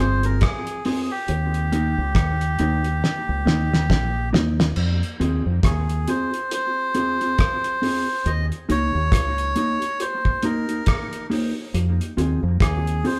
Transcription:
0.00 G1 C4 F4 G#4 C5
0.23 C4 F4 G#4 A#4, closed hi-hat
0.41 G#4, kick, cross-stick, closed hi-hat
0.67 closed hi-hat
0.85 C4 F4 G#4, open hi-hat
1.03 G#4
1.11 G4
1.28 D#2, closed hi-hat
1.54 closed hi-hat
1.72 A#3 D#4 G4, closed hi-hat
1.98 C#2
2.15 D#2, kick, cross-stick, closed hi-hat
2.41 closed hi-hat
2.59 D#2 A#3 D#4 G4, closed hi-hat
2.84 muted clean electric guitar stroke, closed hi-hat
3.04 snare
3.29 C#2
3.46 D#2 A#3 D#4 G4, snare
3.73 snare
3.90 A#1, kick, snare
4.33 D#2 A#3 D#4 G4, snare
4.60 snare
4.76 F2, crash
5.03 closed hi-hat
5.20 D#2 C4 F4 G#4, closed hi-hat
5.46 F2
5.63 D#2 G#4, kick, cross-stick, closed hi-hat
5.90 closed hi-hat
6.08 C4 F4 G#4 C5, closed hi-hat
6.33 muted clean electric guitar stroke, closed hi-hat
6.51 C5, closed hi-hat
6.95 C4 F4 G#4, closed hi-hat
7.21 C4 F4 G#4, closed hi-hat
7.38 kick, cross-stick, closed hi-hat
7.64 closed hi-hat
7.82 C4 F4 G#4, open hi-hat
8.26 D#2 D#5, closed hi-hat
8.52 closed hi-hat
8.69 C#2 A#3 D#4 G4 C#5, closed hi-hat
8.95 D#2
9.12 C#2, kick, cross-stick, closed hi-hat
9.38 closed hi-hat
9.56 A#3 D#4 G4, closed hi-hat
9.82 muted clean electric guitar stroke, closed hi-hat
10.00 C5, closed hi-hat
10.25 kick
10.43 A#3 D#4 G4 A#4, closed hi-hat
10.69 A#3 D#4 G4, closed hi-hat
10.86 kick, cross-stick, closed hi-hat
11.13 closed hi-hat
11.30 A#3 D#4 G4, open hi-hat
11.74 F2, closed hi-hat
12.01 closed hi-hat
12.17 D#2 C4 F4 G#4, closed hi-hat
12.43 F2
12.60 D#2 G#4, kick, cross-stick, closed hi-hat
12.87 closed hi-hat
13.04 C4 F4 G#4 C5, open hi-hat

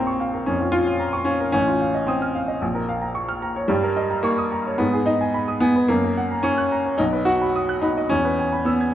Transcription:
Already playing: A#1 A#3 C4 F4 C#5 F5 A#5
0.07 C#6
0.20 F5
0.34 A#4
0.46 F2 C#4
0.60 F4
0.72 F4 C#5
0.86 F5
1.00 A#5
1.13 C#6
1.25 C#4 F5
1.40 A#4
1.52 A1 C#4
1.67 F4
1.81 F5
1.95 D#5
2.07 C4 D#6
2.22 F6
2.35 F5
2.48 D#5
2.62 A#1
2.75 A#4
2.89 F5
3.02 A#5
3.15 C#6
3.29 F6
3.42 A#5
3.56 C#5
3.68 G2 G3
3.83 A#4
3.97 D#5
4.11 A#5
4.23 A#3 C#6
4.38 D#6
4.52 A#5
4.66 C#5
4.78 G#2 B3
4.93 G#4
5.06 D#4 D#5
5.21 G#5
5.34 B5
5.48 D#6
5.60 B3 G#5
5.76 B4
5.88 F#2 A#3
6.04 A#4
6.17 F#5
6.31 A#5
6.43 C#4 C#6
6.58 F#6
6.72 A#5
6.85 C#5
6.98 B1 D#4
7.13 B4
7.25 F#4 F#5
7.42 B5
7.56 D#6
7.69 F#6
7.82 D#4 B5
7.97 D#5
8.09 E2 C#4
8.25 B4
8.39 G#5
8.53 B5
8.65 B3 E6
8.81 G#6

